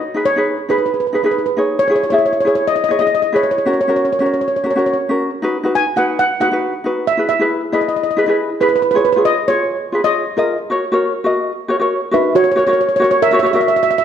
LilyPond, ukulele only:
\new Staff \with { instrumentName = "Ukulele" } { \time 4/4 \key fis \mixolydian \tempo 4 = 136 r16 <dis' gis' b'>16 r16 <dis' gis' b'>8 r16 <dis' gis' b'>8 r8 <dis' gis' b'>16 <dis' gis' b'>8 r16 <dis' gis' cis''>8 | r16 <e' gis' cis''>16 r16 <e' gis' e''>8 r16 <e' gis' cis''>8 r8 <e' gis' cis''>16 <e' gis' dis''>8 r16 <e' gis' b'>8 | r16 <cis' fis' ais'>16 r16 <cis' fis' ais'>8 r16 <cis' fis' ais'>8 r8 <cis' fis' ais'>16 <cis' fis' ais'>8 r16 <cis' fis' ais'>8 | r16 <dis' fis' b'>16 r16 <dis' fis' b'>8 r16 <dis' fis' b'>8 r8 <dis' fis' b'>16 <dis' fis' b'>8 r16 <dis' fis' b'>8 |
r16 <e' gis' b'>16 r16 <e' gis' b'>8 r16 <e' gis' b'>8 r8 <e' gis' b'>16 <e' gis' b'>8 r16 <e' gis' b'>8 | r16 <eis' gis' cis''>16 r16 <eis' gis' cis''>8 r16 <eis' gis' cis''>8 r8 <eis' gis' b'>16 <eis' gis' cis''>8 r16 <eis' gis' dis''>8 | r16 <fis' ais' cis''>16 r16 <fis' ais' cis''>8 r16 <fis' ais' dis''>8 r8 <fis' ais' cis''>16 <fis' ais' cis''>8 r16 <fis' ais' e''>8 | r8 <fis' ais' cis''>16 <fis' ais' cis''>8 r16 <fis' ais' cis''>8 r16 <fis' ais' cis''>16 <fis' ais' cis''>16 <fis' ais' e''>4 r16 | }